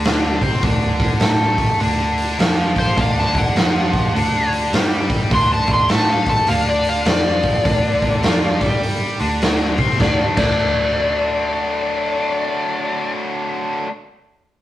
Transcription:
Already playing: D2 D3 D4
0.05 snare, open hi-hat
0.41 C3 C4 C5, kick, open hi-hat
0.54 snare
0.62 D2 D3 D4, kick, open hi-hat
1.00 kick, open hi-hat
1.20 A2 A3 A4, snare, open hi-hat
1.58 kick, open hi-hat
1.80 D2 D3 D4, open hi-hat
2.18 open hi-hat
2.39 F2 F3 F4, snare, open hi-hat
2.76 C5, kick, open hi-hat
2.97 D2 D3 D4 F5, kick, open hi-hat
3.19 A5, snare
3.35 F#5, kick, open hi-hat
3.56 F2 F3 F4, snare, open hi-hat
3.93 kick, open hi-hat
4.14 D2 D3 D4, open hi-hat
4.53 open hi-hat
4.73 G2 G3 G4, snare, open hi-hat
5.10 kick, open hi-hat
5.31 D2 D3 D4 C6, kick, open hi-hat
5.54 A5
5.67 kick, open hi-hat
5.73 C6
5.89 A2 A3 A4 A5, snare, open hi-hat
6.09 F5
6.26 A5, kick, open hi-hat
6.47 D2 D3 D4 F5, open hi-hat
6.69 D5
6.84 open hi-hat
6.89 F5
7.05 F2 F3 F4 D5, snare, open hi-hat
7.43 kick, open hi-hat
7.65 D2 D3 D4, kick, open hi-hat
8.02 kick, open hi-hat
8.23 F2 F3 F4, snare, open hi-hat
8.59 G2 G3 G4, kick, open hi-hat
8.83 open hi-hat
9.19 D2 D3 D4, open hi-hat
9.42 snare, open hi-hat
9.78 C3 C4 C5, kick, open hi-hat
9.90 snare
9.98 D2 D3 F#3 A3 D5, kick, snare
10.02 D4
10.36 D2 D3 F#3 A3 D5, kick, crash
10.40 D4

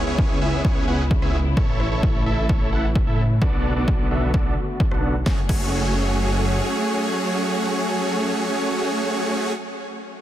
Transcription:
Already playing: C#3 B3 E4 G#4, downlifter
0.07 C#2 B3 C#4 E4 G#4 C#5
0.18 kick
0.41 C#2 B3 C#4 E4 G#4 E5
0.65 C#2 B3 C#4 E4 G#4 C#5, kick
0.88 C#2 B3 C#4 E4 G#4 F#5
1.11 kick
1.22 C#2 B3 C#4 E4 G#4 E5, cross-stick
1.57 A1 E3 A3 E4 A4 C#5, kick
1.80 cross-stick
1.92 A1 E4 A4 C#5
2.03 kick
2.26 A1 E4 A4 E5
2.49 A1 E4 A4 C#5, kick
2.72 A1 E4 A4 F#5
2.95 kick
3.07 A2 E4 A4 E5
3.41 B1 D3 A3 B3 D4 F#4 A4 D5, kick
3.76 B1 B3 D4 F#4 A4 D5
3.88 kick
4.11 B1 B3 D4 F#4 A4 E5
4.34 B1 B3 D4 F#4 A4 D5, kick
4.80 kick
4.91 B1 B3 D4 F#4 A4 F#5, cross-stick
5.26 F#1 F#3 A3 C#4 F#4 G#4 C#5, kick, snare
5.49 F#1 A3 C#4 F#4 G#4 C#5, kick, crash

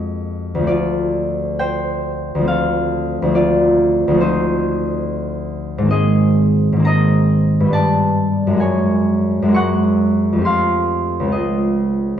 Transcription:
Already playing: F2 G#3 A#3 C4 F#4 G#4 C5 D#5 G#5
0.55 D2 F3
0.62 A3 C4
0.67 F4 D5
1.59 C5 G5
2.35 D2 F3
2.42 A3 C4
2.48 A4 F5
3.22 D2 F3
3.28 A3 C4
3.35 F4 D5
4.08 D2 F3
4.14 A3 C4
4.21 D#4 C5
5.78 G#2 D#3
5.85 A#3 C4
5.91 G#4 D#5
6.73 G#2 D#3
6.79 A#3 C4
6.85 D#5 A#5
7.60 G2 G3
7.67 B3 D4
7.73 D5 A5
8.47 F#2 G#3
8.53 A#3 F#4
8.60 C#5 G#5
9.42 F#2 G#3
9.48 A#3 F#4
9.54 F#5 C#6
10.33 F2 A3
10.38 C4 G4
10.45 F5 C6
11.20 C#2 G#3
11.26 C4 F4
11.32 G#4 D#5

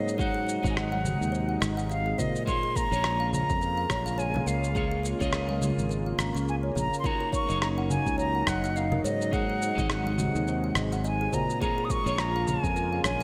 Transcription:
Already playing: G#2 C#3 F#3 A#3 D#4 F#4 C#5 D#5
0.08 shaker
0.18 C3 G#3 D#4 F#4 G#4 C5 F#5, kick, shaker
0.34 G#4
0.47 C5, shaker
0.62 G#1 G#3 D#4 F#4 D#5, kick, shaker
0.67 D#5 G#5
0.75 F#5, cross-stick, shaker
0.92 F#5, high conga
1.05 high conga, low conga, shaker
1.21 D#2, shaker
1.32 C5, shaker
1.49 F#5
1.61 G#1 D#5, cross-stick, shaker
1.77 F#5, shaker
1.90 D#5 F5, shaker
2.06 G#4
2.18 A#2 C5 D#5, kick, low conga, shaker
2.35 shaker
2.46 C#3 G#3 A#3 F4 G#4 C#5 C6, kick, muted conga, shaker
2.63 G#4
2.75 A#4 A#5, kick, shaker
2.91 A#1 A#3 F4 G#4 C#5, shaker
2.96 C#5
3.04 cross-stick, shaker
3.20 F5
3.33 A#5, low conga, shaker
3.49 F2, kick, muted conga, shaker
3.61 A#4, shaker
3.77 F5
3.90 A#1 C#5, kick, cross-stick, high conga, shaker
4.06 F5, shaker
4.18 C#5 G#5, shaker
4.34 G#4, high conga, low conga
4.46 C#2 A#4 F5, shaker
4.64 shaker
4.75 A#3 F4 G#4 C#5, kick, shaker
4.91 G#4
5.03 A#4, shaker
5.19 C#2 A#3 F4 G#4 C#5, kick, shaker
5.24 D#5
5.33 cross-stick, shaker
5.49 F5, high conga
5.61 high conga, low conga, shaker
5.78 G#1, shaker
5.89 A#4, shaker
6.06 F5
6.18 G#1 A#5, cross-stick, shaker
6.35 C#2 C#6, shaker
6.48 G#5, shaker
6.63 C#5
6.75 A#1 G#4 A#5, kick, low conga, shaker
6.94 shaker
7.00 C6
7.04 F#3 A#3 D#4 F#4 A#4 C#5 A#5, kick, muted conga, shaker
7.20 A#4
7.32 C#5 C#6, kick, shaker
7.47 F#1 A#3 D#4 F#4 D#5, shaker
7.51 C#5
7.62 A#5, cross-stick, shaker
7.78 F#5
7.90 G#5, low conga, shaker
8.06 C#2, kick, muted conga, shaker
8.18 C#5 A#5, shaker
8.35 F#5
8.47 F#1 D#5 F#5, kick, cross-stick, high conga, shaker
8.64 F#5, shaker
8.76 D#5 F5, shaker
8.92 A#4, high conga, low conga
9.04 G#2 C#5 D#5, shaker
9.21 shaker
9.31 C3 G#3 D#4 F#4 G#4 C5 F#5, kick, shaker
9.50 G#4
9.62 C5, shaker
9.75 G#1 G#3 D#4 F#4 D#5, kick, shaker
9.80 D#5
9.90 F#5, cross-stick, shaker
10.06 F#5, high conga
10.18 high conga, low conga, shaker
10.35 D#2, shaker
10.48 C5, shaker
10.64 F#5
10.75 G#1 D#5, cross-stick, shaker
10.92 F#5, shaker
11.04 D#5 G#5, shaker
11.21 G#4
11.33 A#2 C5 A#5, kick, low conga, shaker
11.50 shaker
11.60 C#3 A#3 F4 G#4 C#5 A#5, kick, muted conga, shaker
11.78 G#4
11.85 D#6
11.90 A#4 C#6, kick, shaker
12.04 A#1 A#3 F4 G#4 C#5, shaker
12.09 C#5
12.18 A#5, cross-stick, shaker
12.36 F5
12.47 G#5, low conga, shaker
12.64 F2, kick, muted conga, shaker
12.76 A#4, shaker
12.93 F5
13.04 A#1 C#5 G#5, kick, cross-stick, high conga, shaker

